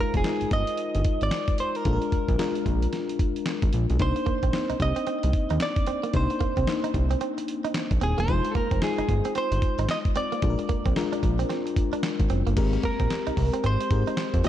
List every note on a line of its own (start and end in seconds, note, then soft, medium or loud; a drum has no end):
0.00 0.18 G#3 medium
0.00 0.18 D#4 medium
0.00 0.18 F4 medium
0.00 0.16 A#4 medium
0.00 0.19 C5 medium
0.14 0.22 F1 loud
0.14 0.50 G#4 medium
0.14 kick medium
0.14 closed hi-hat medium
0.24 1.17 G#3 medium
0.24 1.18 D#4 medium
0.24 1.18 F4 medium
0.24 1.18 A#4 medium
0.24 snare loud
0.24 clap medium
0.24 closed hi-hat medium
0.41 0.46 G1 soft
0.41 closed hi-hat medium
0.51 0.64 G1 medium
0.51 1.23 D#5 loud
0.51 kick medium
0.51 closed hi-hat medium
0.67 closed hi-hat medium
0.77 closed hi-hat medium
0.95 1.03 G1 medium
0.95 closed hi-hat medium
1.04 kick loud
1.04 closed hi-hat medium
1.21 1.30 G#1 medium
1.21 1.57 D5 loud
1.21 closed hi-hat soft
1.31 snare loud
1.31 clap medium
1.31 closed hi-hat medium
1.48 kick loud
1.48 closed hi-hat medium
1.58 1.76 C5 medium
1.58 closed hi-hat medium
1.75 3.37 A#4 medium
1.75 closed hi-hat soft
1.85 1.98 A#1 loud
1.85 2.33 G#3 medium
1.85 2.33 D4 medium
1.85 2.33 F4 medium
1.85 1.94 A4 medium
1.85 kick loud
1.85 closed hi-hat medium
1.93 2.36 A#4 medium
2.02 closed hi-hat soft
2.12 kick medium
2.12 closed hi-hat medium
2.29 2.37 A#1 loud
2.29 kick medium
2.29 closed hi-hat medium
2.38 3.32 G#3 medium
2.38 3.32 D4 medium
2.38 3.32 F4 medium
2.38 3.32 A#4 loud
2.38 snare loud
2.38 clap medium
2.38 closed hi-hat medium
2.55 closed hi-hat medium
2.66 2.87 A#1 medium
2.66 kick medium
2.66 closed hi-hat medium
2.82 closed hi-hat medium
2.93 snare medium
2.93 closed hi-hat medium
3.09 closed hi-hat medium
3.19 kick loud
3.19 closed hi-hat medium
3.36 closed hi-hat soft
3.46 snare loud
3.46 clap medium
3.46 closed hi-hat medium
3.62 3.71 G#1 medium
3.62 kick medium
3.62 closed hi-hat medium
3.73 3.86 A#1 medium
3.73 closed hi-hat medium
3.90 3.98 B1 medium
3.90 closed hi-hat soft
3.99 4.13 C2 loud
3.99 4.47 A#3 medium
3.99 4.47 D4 medium
3.99 4.47 D#4 medium
3.99 4.47 C5 medium
3.99 4.82 C5 medium
3.99 kick loud
3.99 closed hi-hat medium
4.16 muted clean electric guitar stroke soft
4.16 closed hi-hat soft
4.26 4.39 A#3 medium
4.26 kick medium
4.26 closed hi-hat medium
4.43 4.51 A#1 medium
4.43 4.51 C4 medium
4.43 kick medium
4.43 closed hi-hat medium
4.53 5.46 A#3 medium
4.53 5.46 C4 medium
4.53 5.47 D#4 medium
4.53 5.47 C5 medium
4.53 snare loud
4.53 clap medium
4.53 closed hi-hat medium
4.70 4.74 C2 soft
4.70 4.77 D#4 medium
4.70 closed hi-hat soft
4.80 4.93 C2 medium
4.80 5.62 D#5 loud
4.80 muted clean electric guitar stroke soft
4.80 kick medium
4.80 closed hi-hat medium
4.96 5.04 C4 medium
4.96 closed hi-hat medium
5.07 5.19 C4 medium
5.07 closed hi-hat medium
5.23 5.32 C2 medium
5.23 muted clean electric guitar stroke soft
5.23 closed hi-hat medium
5.33 kick loud
5.33 closed hi-hat medium
5.50 5.59 D#2 medium
5.50 5.58 D#4 medium
5.50 closed hi-hat medium
5.60 6.16 D5 loud
5.60 muted clean electric guitar stroke soft
5.60 snare loud
5.60 clap medium
5.60 closed hi-hat medium
5.76 kick loud
5.76 closed hi-hat medium
5.87 6.00 C4 medium
5.87 closed hi-hat medium
6.03 6.11 A#3 medium
6.03 closed hi-hat soft
6.13 6.27 C2 loud
6.13 6.61 A#3 medium
6.13 6.61 D4 medium
6.13 6.61 D#4 medium
6.13 6.61 C5 medium
6.13 7.18 C5 medium
6.13 kick loud
6.13 closed hi-hat medium
6.30 muted clean electric guitar stroke soft
6.30 closed hi-hat soft
6.40 6.53 A#3 medium
6.40 kick medium
6.40 closed hi-hat medium
6.57 6.65 C2 medium
6.57 6.65 C4 medium
6.57 kick medium
6.57 closed hi-hat medium
6.67 7.60 A#3 medium
6.67 7.60 D4 medium
6.67 7.61 D#4 medium
6.67 7.61 C5 medium
6.67 snare loud
6.67 clap medium
6.67 closed hi-hat medium
6.84 6.92 D#4 medium
6.84 closed hi-hat medium
6.94 7.15 C2 medium
6.94 muted clean electric guitar stroke soft
6.94 kick medium
6.94 closed hi-hat medium
7.11 7.18 C4 medium
7.11 closed hi-hat medium
7.21 7.33 C4 medium
7.21 closed hi-hat medium
7.38 muted clean electric guitar stroke soft
7.38 closed hi-hat medium
7.48 closed hi-hat medium
7.64 7.72 D#4 medium
7.64 closed hi-hat medium
7.74 muted clean electric guitar stroke soft
7.74 snare loud
7.74 clap medium
7.74 closed hi-hat medium
7.91 7.99 A#1 medium
7.91 kick medium
7.91 closed hi-hat medium
8.01 8.15 D#1 medium
8.01 8.14 C4 medium
8.01 8.18 G#4 medium
8.01 closed hi-hat medium
8.18 8.26 E1 medium
8.18 8.26 A#3 medium
8.18 8.52 C5 medium
8.18 closed hi-hat soft
8.28 8.41 F1 loud
8.28 8.75 G#3 medium
8.28 8.76 D#4 medium
8.28 8.76 F4 medium
8.28 8.76 C5 medium
8.28 kick loud
8.28 closed hi-hat medium
8.45 muted clean electric guitar stroke soft
8.45 closed hi-hat medium
8.51 8.68 A#3 medium
8.51 8.56 A4 medium
8.51 kick medium
8.51 closed hi-hat medium
8.57 8.83 A#4 medium
8.71 8.80 F1 loud
8.71 8.79 C4 medium
8.71 kick medium
8.71 closed hi-hat medium
8.82 9.75 G#3 medium
8.82 9.75 D#4 medium
8.82 9.75 F4 medium
8.82 9.33 G#4 medium
8.82 9.75 C5 medium
8.82 snare loud
8.82 clap medium
8.82 closed hi-hat medium
8.98 9.02 G1 medium
8.98 9.06 D#4 medium
8.98 closed hi-hat medium
9.09 9.22 G1 medium
9.09 muted clean electric guitar stroke soft
9.09 kick medium
9.09 closed hi-hat medium
9.25 9.33 C4 medium
9.25 closed hi-hat medium
9.35 9.48 C4 medium
9.35 9.87 C5 loud
9.35 closed hi-hat medium
9.52 9.60 G1 loud
9.52 muted clean electric guitar stroke soft
9.52 closed hi-hat medium
9.62 kick medium
9.62 closed hi-hat medium
9.79 9.87 G#1 medium
9.79 9.87 D#4 medium
9.79 closed hi-hat medium
9.89 9.98 D#5 loud
9.89 muted clean electric guitar stroke soft
9.89 snare loud
9.89 clap medium
9.89 closed hi-hat medium
10.05 kick loud
10.05 closed hi-hat medium
10.16 10.28 C4 medium
10.16 12.00 D5 medium
10.16 closed hi-hat medium
10.32 10.40 A#3 medium
10.32 closed hi-hat soft
10.42 10.56 A#1 loud
10.42 10.90 G#3 medium
10.42 10.90 D4 medium
10.42 10.90 F4 medium
10.42 10.51 A4 medium
10.42 kick loud
10.42 closed hi-hat medium
10.50 10.94 A#4 medium
10.59 muted clean electric guitar stroke soft
10.59 closed hi-hat medium
10.69 10.82 A#3 medium
10.69 kick medium
10.69 closed hi-hat medium
10.85 10.94 A#1 loud
10.85 10.94 C4 medium
10.85 kick medium
10.85 closed hi-hat medium
10.96 11.89 G#3 medium
10.96 11.89 D4 medium
10.96 11.89 F4 medium
10.96 11.90 A#4 loud
10.96 snare loud
10.96 clap medium
10.96 closed hi-hat medium
11.13 11.20 D4 medium
11.13 closed hi-hat medium
11.23 11.44 A#1 medium
11.23 muted clean electric guitar stroke soft
11.23 kick medium
11.23 closed hi-hat medium
11.39 11.47 C4 medium
11.39 closed hi-hat medium
11.50 11.62 C4 medium
11.50 snare medium
11.50 closed hi-hat medium
11.66 muted clean electric guitar stroke soft
11.66 closed hi-hat medium
11.76 kick loud
11.76 closed hi-hat medium
11.93 12.01 D4 medium
11.93 closed hi-hat medium
12.03 muted clean electric guitar stroke soft
12.03 snare loud
12.03 clap medium
12.03 closed hi-hat medium
12.20 12.28 G#1 medium
12.20 kick medium
12.20 closed hi-hat medium
12.30 12.43 F#1 medium
12.30 12.42 C4 medium
12.30 closed hi-hat medium
12.47 12.55 G1 medium
12.47 12.54 A#3 medium
12.47 closed hi-hat soft
12.56 12.78 G#1 loud
12.56 13.50 G#3 medium
12.56 13.50 C4 medium
12.56 13.50 G4 medium
12.56 13.50 A#4 loud
12.56 kick loud
12.56 closed hi-hat medium
12.56 crash medium
12.73 muted clean electric guitar stroke soft
12.73 closed hi-hat soft
12.83 12.96 A#3 medium
12.83 13.67 A#4 medium
12.83 kick medium
12.83 closed hi-hat medium
13.00 13.08 A#1 loud
13.00 13.08 C4 medium
13.00 kick medium
13.00 closed hi-hat medium
13.10 snare loud
13.10 clap medium
13.10 closed hi-hat medium
13.27 13.31 C2 soft
13.27 13.35 D#4 medium
13.27 closed hi-hat medium
13.37 13.50 C2 loud
13.37 muted clean electric guitar stroke soft
13.37 kick medium
13.37 open hi-hat medium
13.53 13.61 C4 medium
13.53 closed hi-hat medium
13.64 13.77 G#1 loud
13.64 13.76 C4 medium
13.64 14.46 C5 loud
13.64 closed hi-hat medium
13.80 muted clean electric guitar stroke soft
13.80 closed hi-hat medium
13.90 14.04 G#2 medium
13.90 14.44 G#3 medium
13.90 14.44 C4 medium
13.90 14.44 G4 medium
13.90 14.45 A#4 medium
13.90 kick loud
13.90 closed hi-hat medium
14.07 14.15 D#4 medium
14.07 closed hi-hat medium
14.17 muted clean electric guitar stroke soft
14.17 snare loud
14.17 clap medium
14.17 closed hi-hat medium
14.34 14.42 F2 loud
14.34 kick loud
14.34 closed hi-hat medium
14.44 14.49 D#2 medium
14.44 14.49 F3 medium
14.44 14.49 C4 medium
14.44 14.49 D#4 medium
14.44 14.49 F4 medium
14.44 14.49 G4 medium
14.44 open hi-hat medium